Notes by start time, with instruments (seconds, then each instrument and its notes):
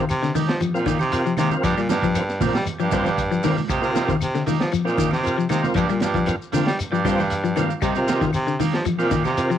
Already playing: clean electric guitar D#3
0.09 baritone saxophone C3, closed hi-hat, claves, shekere
0.23 clean electric guitar D3, snare, shekere
0.35 clean electric guitar D#3 D#4 G4, open hi-hat, high conga, low conga, shekere
0.48 baritone saxophone F3, snare, shekere
0.60 clean electric guitar F3, closed hi-hat, high conga, claves, shekere
0.73 baritone saxophone A#2, tonewheel organ C4 F4 A#4, shekere
0.86 clean electric guitar D#3 A#3 D#4 G4, kick, closed hi-hat, high conga, shekere
0.99 baritone saxophone C3, clean electric guitar D#4 G4, high conga, claves, shekere
1.12 tonewheel organ C4 F4 A#4, closed hi-hat, shekere
1.26 clean electric guitar F3, shekere
1.37 baritone saxophone C3, clean electric guitar D#3 A#3 D#4 G4, closed hi-hat, low conga, claves, shekere
1.50 tonewheel organ C4 F4 A#4, low conga, shekere
1.63 baritone saxophone G2, clean electric guitar F3 A#3 D4 G4, kick, closed hi-hat, claves, shekere
1.77 baritone saxophone A#2, clean electric guitar G3, shekere
1.89 baritone saxophone G2, clean electric guitar F3 A#3 D4 G4, snare, closed hi-hat, high conga, shekere
2.03 clean electric guitar F3, kick, closed hi-hat, shekere
2.15 tonewheel organ C4 F4 A#4, closed hi-hat, claves, shekere
2.29 snare, shekere
2.41 clean electric guitar A#2 F3 A#3 D4 G4, tonewheel organ C4 F4 A#4, kick, open hi-hat, high conga, low conga, shekere
2.54 baritone saxophone G3, snare, shekere
2.66 closed hi-hat, high conga, claves, shekere
2.80 baritone saxophone G2, clean electric guitar F3 A#3 G4, shekere
2.92 clean electric guitar F3 G3 A#3 D4 G4, tonewheel organ C4 F4 C5, kick, closed hi-hat, high conga, shekere
3.05 clean electric guitar A#3 D4 G4, snare, high conga, claves, shekere
3.18 kick, closed hi-hat, shekere
3.31 clean electric guitar F3, shekere
3.43 clean electric guitar D#3 F3 A#3 D4 G4, tonewheel organ C4 F4 A#4, open hi-hat, high conga, low conga, claves, shekere
3.57 low conga, shekere
3.69 baritone saxophone C3, clean electric guitar A#3 D#4 G4, muted clean electric guitar stroke, kick, closed hi-hat, claves, shekere
3.82 baritone saxophone C3, tonewheel organ C4 F4 A#4, shekere
3.95 clean electric guitar A#3 D#4 G4, snare, closed hi-hat, high conga, shekere
4.08 clean electric guitar D#3, kick, closed hi-hat, high conga, shekere
4.21 baritone saxophone C3, closed hi-hat, claves, shekere
4.35 clean electric guitar D3, snare, shekere
4.46 clean electric guitar D#3 A#3 D#4 G4, open hi-hat, high conga, low conga, shekere
4.60 baritone saxophone F3, snare, shekere
4.72 clean electric guitar F3, closed hi-hat, claves, shekere
4.85 baritone saxophone A#2, tonewheel organ C4 F4 A#4, clean electric guitar D#4 G4, shekere
4.98 clean electric guitar D#3 A#3 D#4 G4, kick, closed hi-hat, high conga, shekere
5.11 baritone saxophone C3, clean electric guitar D#4 G4, snare, high conga, claves, shekere
5.23 tonewheel organ C4 F4 A#4, closed hi-hat, shekere
5.38 clean electric guitar F3, shekere
5.49 baritone saxophone C3, clean electric guitar D#3 A#3 D#4 G4, closed hi-hat, low conga, claves, shekere
5.63 tonewheel organ C4 F4 A#4, snare, low conga, shekere
5.74 baritone saxophone G2, clean electric guitar F3 A#3 D4 G4, kick, closed hi-hat, claves, shekere
5.89 baritone saxophone A#2, clean electric guitar G3, shekere
6.00 baritone saxophone G2, clean electric guitar F3 A#3 D4 G4, snare, closed hi-hat, high conga, shekere
6.14 clean electric guitar F3, kick, closed hi-hat, high conga, shekere
6.26 tonewheel organ C4 F4 A#4, closed hi-hat, claves, shekere
6.42 shekere
6.52 clean electric guitar D3 F3 A#3 D4 G4, tonewheel organ C4 F4 A#4, open hi-hat, high conga, low conga, shekere
6.67 baritone saxophone G3, snare, shekere
6.79 closed hi-hat, claves, shekere
6.91 baritone saxophone G2, clean electric guitar F3 A#3 D4 G4, shekere
7.04 clean electric guitar F3 G3 A#3 D4 G4, tonewheel organ C4 F4 C5, kick, closed hi-hat, high conga, shekere
7.18 clean electric guitar A#3 D4 G4, snare, high conga, claves, shekere
7.30 closed hi-hat, shekere
7.44 clean electric guitar F3, shekere
7.56 clean electric guitar D#3 F3 A#3 G4, tonewheel organ C4 F4 A#4, muted clean electric guitar stroke, closed hi-hat, low conga, claves, shekere
7.70 shekere
7.82 baritone saxophone C3, clean electric guitar D#3 G3 A#3 D#4 G4, kick, closed hi-hat, claves, shekere
7.95 baritone saxophone C3, tonewheel organ C4 F4 A#4, shekere
8.07 clean electric guitar D#3 A#3 D#4 G4, snare, closed hi-hat, high conga, shekere
8.21 clean electric guitar D#3, kick, snare, closed hi-hat, high conga, shekere
8.33 baritone saxophone C3, closed hi-hat, claves, shekere
8.47 clean electric guitar D3, shekere
8.60 clean electric guitar D#3 A#3 D#4 G4, open hi-hat, high conga, low conga, shekere
8.73 baritone saxophone F3, snare, shekere
8.85 clean electric guitar F3, closed hi-hat, high conga, claves, shekere
8.98 baritone saxophone A#2, clean electric guitar A#3 D#4 G4, tonewheel organ C4 F4 A#4, shekere
9.11 clean electric guitar D#3 A#3 G4, muted clean electric guitar stroke, kick, closed hi-hat, high conga, shekere
9.24 baritone saxophone C3, clean electric guitar A#3 D#4 G4, snare, high conga, claves, shekere
9.37 tonewheel organ C4 F4 A#4, closed hi-hat, shekere
9.50 clean electric guitar F3, shekere